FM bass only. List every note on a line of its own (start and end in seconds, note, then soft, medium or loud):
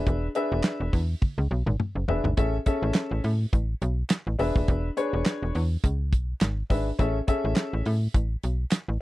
0.07 0.29 E1 loud
0.52 0.61 E1 loud
0.80 0.90 E1 medium
0.93 1.15 E2 medium
1.38 1.48 C#2 medium
1.51 1.63 B1 medium
1.66 1.76 G#1 loud
1.95 2.05 F#1 medium
2.08 2.21 E1 medium
2.24 2.34 G#1 loud
2.37 2.59 A1 loud
2.82 2.92 A1 loud
3.11 3.21 A1 medium
3.24 3.46 A2 medium
3.53 3.75 A1 medium
3.82 4.04 B1 medium
4.27 4.36 A1 medium
4.39 4.52 E1 medium
4.56 4.65 D#1 medium
4.68 4.90 E1 loud
5.13 5.23 E1 loud
5.43 5.52 E1 medium
5.55 5.77 E2 medium
5.84 6.14 C#2 medium
6.12 6.34 B1 loud
6.41 6.63 G#1 medium
6.70 6.92 G#1 medium
6.99 7.21 A1 loud
7.45 7.54 A1 medium
7.73 7.83 A1 medium
7.86 8.08 A2 medium
8.14 8.36 A1 medium
8.44 8.66 B1 medium
8.88 8.98 A1 medium